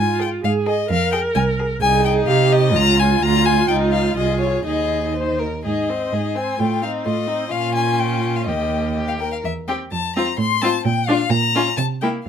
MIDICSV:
0, 0, Header, 1, 5, 480
1, 0, Start_track
1, 0, Key_signature, -4, "major"
1, 0, Tempo, 465839
1, 929, Time_signature, 2, 2, 24, 8
1, 3815, Tempo, 488202
1, 5735, Tempo, 472069
1, 12477, End_track
2, 0, Start_track
2, 0, Title_t, "Violin"
2, 0, Program_c, 0, 40
2, 0, Note_on_c, 0, 80, 71
2, 212, Note_off_c, 0, 80, 0
2, 217, Note_on_c, 0, 79, 69
2, 299, Note_off_c, 0, 79, 0
2, 459, Note_on_c, 0, 77, 68
2, 541, Note_off_c, 0, 77, 0
2, 695, Note_on_c, 0, 75, 69
2, 926, Note_off_c, 0, 75, 0
2, 932, Note_on_c, 0, 77, 90
2, 1147, Note_off_c, 0, 77, 0
2, 1153, Note_on_c, 0, 79, 79
2, 1236, Note_off_c, 0, 79, 0
2, 1391, Note_on_c, 0, 80, 78
2, 1473, Note_off_c, 0, 80, 0
2, 1864, Note_on_c, 0, 80, 96
2, 2096, Note_off_c, 0, 80, 0
2, 2113, Note_on_c, 0, 79, 81
2, 2196, Note_off_c, 0, 79, 0
2, 2348, Note_on_c, 0, 77, 87
2, 2598, Note_on_c, 0, 75, 89
2, 2614, Note_off_c, 0, 77, 0
2, 2845, Note_on_c, 0, 82, 104
2, 2861, Note_off_c, 0, 75, 0
2, 3087, Note_on_c, 0, 80, 80
2, 3102, Note_off_c, 0, 82, 0
2, 3327, Note_on_c, 0, 82, 96
2, 3342, Note_off_c, 0, 80, 0
2, 3563, Note_on_c, 0, 80, 87
2, 3578, Note_off_c, 0, 82, 0
2, 3783, Note_off_c, 0, 80, 0
2, 3789, Note_on_c, 0, 79, 84
2, 3869, Note_off_c, 0, 79, 0
2, 4026, Note_on_c, 0, 77, 69
2, 4261, Note_off_c, 0, 77, 0
2, 4267, Note_on_c, 0, 75, 66
2, 4496, Note_off_c, 0, 75, 0
2, 4502, Note_on_c, 0, 73, 58
2, 4736, Note_off_c, 0, 73, 0
2, 4742, Note_on_c, 0, 75, 58
2, 5231, Note_off_c, 0, 75, 0
2, 5716, Note_on_c, 0, 75, 55
2, 6457, Note_on_c, 0, 80, 57
2, 6472, Note_off_c, 0, 75, 0
2, 6690, Note_on_c, 0, 79, 61
2, 6705, Note_off_c, 0, 80, 0
2, 6921, Note_off_c, 0, 79, 0
2, 6927, Note_on_c, 0, 77, 54
2, 7008, Note_off_c, 0, 77, 0
2, 7164, Note_on_c, 0, 75, 65
2, 7619, Note_on_c, 0, 77, 77
2, 7634, Note_off_c, 0, 75, 0
2, 7853, Note_off_c, 0, 77, 0
2, 7859, Note_on_c, 0, 80, 72
2, 8109, Note_on_c, 0, 79, 63
2, 8124, Note_off_c, 0, 80, 0
2, 8486, Note_on_c, 0, 77, 54
2, 8502, Note_off_c, 0, 79, 0
2, 8586, Note_off_c, 0, 77, 0
2, 8592, Note_on_c, 0, 75, 59
2, 9078, Note_off_c, 0, 75, 0
2, 9216, Note_on_c, 0, 77, 49
2, 9265, Note_off_c, 0, 77, 0
2, 9336, Note_on_c, 0, 79, 52
2, 9458, Note_off_c, 0, 79, 0
2, 9464, Note_on_c, 0, 77, 49
2, 9512, Note_off_c, 0, 77, 0
2, 9592, Note_on_c, 0, 76, 65
2, 9673, Note_off_c, 0, 76, 0
2, 9826, Note_on_c, 0, 79, 56
2, 9907, Note_off_c, 0, 79, 0
2, 10072, Note_on_c, 0, 81, 72
2, 10306, Note_off_c, 0, 81, 0
2, 10312, Note_on_c, 0, 82, 64
2, 10542, Note_off_c, 0, 82, 0
2, 10548, Note_on_c, 0, 84, 79
2, 10779, Note_on_c, 0, 81, 77
2, 10794, Note_off_c, 0, 84, 0
2, 11015, Note_off_c, 0, 81, 0
2, 11021, Note_on_c, 0, 79, 78
2, 11248, Note_on_c, 0, 77, 81
2, 11263, Note_off_c, 0, 79, 0
2, 11481, Note_on_c, 0, 82, 93
2, 11496, Note_off_c, 0, 77, 0
2, 11949, Note_off_c, 0, 82, 0
2, 11955, Note_on_c, 0, 81, 70
2, 12036, Note_off_c, 0, 81, 0
2, 12200, Note_on_c, 0, 79, 61
2, 12282, Note_off_c, 0, 79, 0
2, 12439, Note_on_c, 0, 77, 52
2, 12477, Note_off_c, 0, 77, 0
2, 12477, End_track
3, 0, Start_track
3, 0, Title_t, "Violin"
3, 0, Program_c, 1, 40
3, 202, Note_on_c, 1, 68, 59
3, 386, Note_off_c, 1, 68, 0
3, 689, Note_on_c, 1, 68, 62
3, 867, Note_off_c, 1, 68, 0
3, 1166, Note_on_c, 1, 68, 73
3, 1342, Note_off_c, 1, 68, 0
3, 1647, Note_on_c, 1, 68, 60
3, 1823, Note_off_c, 1, 68, 0
3, 1883, Note_on_c, 1, 63, 61
3, 2852, Note_on_c, 1, 65, 54
3, 2868, Note_off_c, 1, 63, 0
3, 3332, Note_off_c, 1, 65, 0
3, 3338, Note_on_c, 1, 65, 57
3, 3801, Note_off_c, 1, 65, 0
3, 3807, Note_on_c, 1, 63, 56
3, 4246, Note_off_c, 1, 63, 0
3, 4284, Note_on_c, 1, 68, 44
3, 4755, Note_off_c, 1, 68, 0
3, 4768, Note_on_c, 1, 68, 39
3, 5234, Note_off_c, 1, 68, 0
3, 5240, Note_on_c, 1, 72, 55
3, 5475, Note_on_c, 1, 70, 45
3, 5489, Note_off_c, 1, 72, 0
3, 5720, Note_off_c, 1, 70, 0
3, 5726, Note_on_c, 1, 68, 38
3, 5981, Note_on_c, 1, 72, 42
3, 5996, Note_off_c, 1, 68, 0
3, 6216, Note_on_c, 1, 68, 36
3, 6231, Note_off_c, 1, 72, 0
3, 6442, Note_on_c, 1, 72, 40
3, 6457, Note_off_c, 1, 68, 0
3, 6680, Note_off_c, 1, 72, 0
3, 6686, Note_on_c, 1, 65, 41
3, 6934, Note_on_c, 1, 63, 42
3, 6949, Note_off_c, 1, 65, 0
3, 7160, Note_on_c, 1, 65, 42
3, 7176, Note_off_c, 1, 63, 0
3, 7382, Note_on_c, 1, 63, 44
3, 7398, Note_off_c, 1, 65, 0
3, 7607, Note_off_c, 1, 63, 0
3, 7613, Note_on_c, 1, 65, 52
3, 8605, Note_on_c, 1, 67, 44
3, 8620, Note_off_c, 1, 65, 0
3, 9046, Note_off_c, 1, 67, 0
3, 9092, Note_on_c, 1, 67, 49
3, 9341, Note_on_c, 1, 70, 52
3, 9356, Note_off_c, 1, 67, 0
3, 9585, Note_off_c, 1, 70, 0
3, 9827, Note_on_c, 1, 67, 47
3, 9939, Note_off_c, 1, 67, 0
3, 10320, Note_on_c, 1, 65, 52
3, 10426, Note_off_c, 1, 65, 0
3, 10802, Note_on_c, 1, 65, 67
3, 10905, Note_off_c, 1, 65, 0
3, 11268, Note_on_c, 1, 65, 60
3, 11371, Note_off_c, 1, 65, 0
3, 11730, Note_on_c, 1, 65, 63
3, 11840, Note_off_c, 1, 65, 0
3, 12218, Note_on_c, 1, 64, 44
3, 12328, Note_off_c, 1, 64, 0
3, 12477, End_track
4, 0, Start_track
4, 0, Title_t, "Viola"
4, 0, Program_c, 2, 41
4, 0, Note_on_c, 2, 65, 54
4, 448, Note_off_c, 2, 65, 0
4, 455, Note_on_c, 2, 68, 62
4, 917, Note_off_c, 2, 68, 0
4, 923, Note_on_c, 2, 70, 67
4, 1860, Note_off_c, 2, 70, 0
4, 1876, Note_on_c, 2, 68, 70
4, 2349, Note_on_c, 2, 67, 71
4, 2364, Note_off_c, 2, 68, 0
4, 2829, Note_off_c, 2, 67, 0
4, 2835, Note_on_c, 2, 65, 67
4, 4720, Note_off_c, 2, 65, 0
4, 4752, Note_on_c, 2, 63, 44
4, 5475, Note_off_c, 2, 63, 0
4, 5735, Note_on_c, 2, 63, 38
4, 5976, Note_on_c, 2, 60, 36
4, 5992, Note_off_c, 2, 63, 0
4, 6208, Note_on_c, 2, 63, 39
4, 6223, Note_off_c, 2, 60, 0
4, 6449, Note_on_c, 2, 60, 46
4, 6464, Note_off_c, 2, 63, 0
4, 6680, Note_off_c, 2, 60, 0
4, 6686, Note_on_c, 2, 57, 44
4, 6917, Note_on_c, 2, 60, 40
4, 6932, Note_off_c, 2, 57, 0
4, 7152, Note_on_c, 2, 57, 42
4, 7168, Note_off_c, 2, 60, 0
4, 7379, Note_on_c, 2, 60, 50
4, 7394, Note_off_c, 2, 57, 0
4, 7616, Note_off_c, 2, 60, 0
4, 7622, Note_on_c, 2, 61, 53
4, 8603, Note_on_c, 2, 58, 44
4, 8618, Note_off_c, 2, 61, 0
4, 9376, Note_off_c, 2, 58, 0
4, 9828, Note_on_c, 2, 60, 47
4, 9940, Note_off_c, 2, 60, 0
4, 10320, Note_on_c, 2, 60, 57
4, 10426, Note_off_c, 2, 60, 0
4, 10786, Note_on_c, 2, 60, 57
4, 10896, Note_off_c, 2, 60, 0
4, 11252, Note_on_c, 2, 62, 71
4, 11363, Note_off_c, 2, 62, 0
4, 11732, Note_on_c, 2, 61, 58
4, 11841, Note_off_c, 2, 61, 0
4, 12209, Note_on_c, 2, 58, 52
4, 12323, Note_off_c, 2, 58, 0
4, 12477, End_track
5, 0, Start_track
5, 0, Title_t, "Cello"
5, 0, Program_c, 3, 42
5, 0, Note_on_c, 3, 44, 62
5, 355, Note_off_c, 3, 44, 0
5, 451, Note_on_c, 3, 44, 67
5, 828, Note_off_c, 3, 44, 0
5, 928, Note_on_c, 3, 41, 72
5, 1303, Note_off_c, 3, 41, 0
5, 1397, Note_on_c, 3, 36, 67
5, 1778, Note_off_c, 3, 36, 0
5, 1865, Note_on_c, 3, 36, 65
5, 2320, Note_off_c, 3, 36, 0
5, 2359, Note_on_c, 3, 48, 70
5, 2842, Note_on_c, 3, 37, 77
5, 2857, Note_off_c, 3, 48, 0
5, 3322, Note_off_c, 3, 37, 0
5, 3328, Note_on_c, 3, 38, 65
5, 3802, Note_off_c, 3, 38, 0
5, 3812, Note_on_c, 3, 37, 59
5, 4249, Note_off_c, 3, 37, 0
5, 4274, Note_on_c, 3, 36, 53
5, 4750, Note_off_c, 3, 36, 0
5, 4760, Note_on_c, 3, 39, 45
5, 5516, Note_off_c, 3, 39, 0
5, 5729, Note_on_c, 3, 44, 55
5, 6136, Note_off_c, 3, 44, 0
5, 6210, Note_on_c, 3, 44, 48
5, 6612, Note_off_c, 3, 44, 0
5, 6696, Note_on_c, 3, 45, 57
5, 7087, Note_off_c, 3, 45, 0
5, 7163, Note_on_c, 3, 45, 53
5, 7556, Note_off_c, 3, 45, 0
5, 7643, Note_on_c, 3, 46, 52
5, 8607, Note_on_c, 3, 39, 51
5, 8622, Note_off_c, 3, 46, 0
5, 9378, Note_off_c, 3, 39, 0
5, 9582, Note_on_c, 3, 40, 50
5, 9966, Note_off_c, 3, 40, 0
5, 10066, Note_on_c, 3, 41, 51
5, 10446, Note_off_c, 3, 41, 0
5, 10537, Note_on_c, 3, 45, 68
5, 10917, Note_off_c, 3, 45, 0
5, 11016, Note_on_c, 3, 46, 67
5, 11389, Note_off_c, 3, 46, 0
5, 11474, Note_on_c, 3, 46, 79
5, 11858, Note_off_c, 3, 46, 0
5, 11960, Note_on_c, 3, 48, 62
5, 12349, Note_off_c, 3, 48, 0
5, 12477, End_track
0, 0, End_of_file